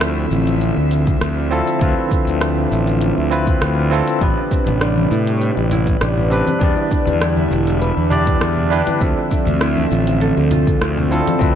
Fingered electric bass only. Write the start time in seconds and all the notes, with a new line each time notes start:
Already playing: D2
0.31 A1
0.77 D2
1.21 D2
1.81 D2
2.27 D2
2.72 A1
3.18 D2
3.62 D2
4.21 A1
4.67 A1
5.11 A2
5.57 A1
6.01 A1
6.61 E2
7.07 E2
7.51 E1
7.97 E2
8.41 E2
9.01 D2
9.47 D2
9.91 A1
10.37 D2
10.81 D2
11.41 D2